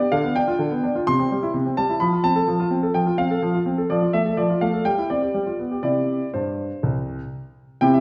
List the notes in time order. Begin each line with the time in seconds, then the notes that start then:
Already playing: D5
0.00 G4
0.12 D3 F5
0.24 B3
0.36 D4 G5
0.48 F4
0.59 D3
0.71 B3
0.83 D4
0.95 F4
1.07 C3 C6
1.20 C4
1.31 G3
1.43 E4
1.54 C3
1.66 C4
1.77 G3 A5
1.90 E4
2.00 F3 B5
2.13 F4
2.24 C4 A5
2.36 A4
2.48 F3
2.60 F4
2.70 C4
2.83 A4
2.94 F3 G5
3.06 F4
3.18 C4 F5
3.31 A4
3.42 F3
3.55 F4
3.66 C4
3.78 A4
3.90 F3 D5
4.02 F4
4.13 A3 E5
4.26 A4
4.37 F3 D5
4.50 F4
4.61 A3 F5
4.74 A4
4.85 G3 G5
4.98 E4
5.10 C4 D5
5.22 G4
5.34 G3
5.46 F4
5.59 B3
5.71 G4
5.83 C3 E4 G4 D5
6.34 G2 C5
6.83 C2
7.81 C3 C4 E4 G4 G5
7.94 E5